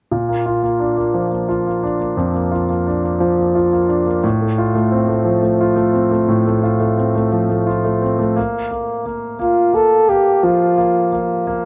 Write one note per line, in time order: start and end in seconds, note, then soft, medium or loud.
0.11 2.14 A#2 soft
0.29 0.61 A#3 soft
0.46 1.47 F4 soft
0.63 0.96 A#3 soft
0.80 1.82 D4 soft
0.97 1.30 A#3 soft
1.14 3.17 F3 soft
1.32 1.65 A#3 soft
1.49 2.50 F4 soft
1.67 1.98 A#3 soft
1.83 2.85 D4 soft
2.00 2.33 A#3 soft
2.17 4.19 F2 soft
2.34 2.68 A#3 soft
2.52 3.54 F4 soft
2.69 3.02 A#3 soft
2.87 3.87 D4 soft
3.04 3.36 A#3 soft
3.20 4.20 F3 medium
3.38 3.71 A#3 soft
3.55 4.22 F4 soft
3.72 4.05 A#3 soft
3.88 4.22 D4 soft
4.06 4.23 A#3 soft
4.24 6.25 A2 medium
4.41 4.73 A3 soft
4.58 5.59 F4 soft
4.75 5.06 A3 soft
4.92 5.92 C4 soft
5.08 5.41 A3 soft
5.25 7.28 F3 medium
5.42 5.75 A3 soft
5.61 6.62 F4 soft
5.76 6.10 A3 soft
5.93 6.96 C4 soft
6.11 6.45 A3 soft
6.28 8.32 A2 medium
6.46 6.78 A3 soft
6.63 7.65 F4 soft
6.80 7.14 A3 soft
6.98 8.00 C4 soft
7.15 7.48 A3 soft
7.32 8.33 F3 medium
7.49 7.83 A3 soft
7.67 8.34 F4 soft
7.84 8.17 A3 soft
8.02 8.36 C4 soft
8.19 8.36 A3 soft
8.36 8.70 A#3 medium
8.71 9.04 A#3 soft
9.06 9.38 A#3 soft
9.39 9.72 A#3 soft
9.39 9.76 F4 medium
9.73 10.07 A#3 soft
9.73 10.11 A4 medium
10.09 10.76 A#3 soft
10.09 10.46 G4 medium
10.43 11.65 F3 medium
10.43 11.21 F4 medium
10.78 11.11 A#3 soft
11.12 11.45 A#3 soft
11.47 11.65 A#3 soft